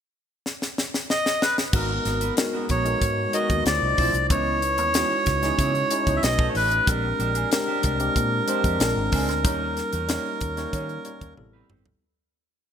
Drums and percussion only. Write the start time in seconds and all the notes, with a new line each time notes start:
0.46 snare
0.62 snare
0.78 snare
0.94 snare
1.10 snare
1.26 snare
1.42 snare
1.58 snare
1.73 kick, crash
2.05 snare, closed hi-hat
2.21 closed hi-hat
2.37 snare, closed hi-hat
2.69 kick, closed hi-hat
2.86 closed hi-hat
3.02 kick, closed hi-hat
3.33 closed hi-hat
3.50 kick, closed hi-hat
3.66 snare, closed hi-hat
3.98 kick, open hi-hat
4.14 closed hi-hat
4.30 kick, closed hi-hat
4.62 closed hi-hat
4.78 closed hi-hat
4.94 snare, closed hi-hat
5.26 kick, snare, closed hi-hat
5.43 snare, closed hi-hat
5.59 kick, closed hi-hat
5.75 closed hi-hat
5.91 closed hi-hat
6.07 kick, closed hi-hat
6.23 snare, closed hi-hat
6.39 kick
6.55 open hi-hat
6.72 closed hi-hat
6.87 kick, closed hi-hat
7.20 closed hi-hat
7.35 closed hi-hat
7.52 snare, closed hi-hat
7.83 kick, closed hi-hat
8.00 closed hi-hat
8.16 kick, closed hi-hat
8.48 closed hi-hat
8.64 kick, closed hi-hat
8.80 snare, closed hi-hat
9.12 kick, open hi-hat
9.29 snare, closed hi-hat
9.45 kick, closed hi-hat
9.77 snare, closed hi-hat
9.93 closed hi-hat
10.09 snare, closed hi-hat
10.41 kick, closed hi-hat
10.57 snare, closed hi-hat
10.73 kick, closed hi-hat
10.89 closed hi-hat
11.05 closed hi-hat
11.21 kick, closed hi-hat
11.37 high tom
11.70 mid tom
11.86 floor tom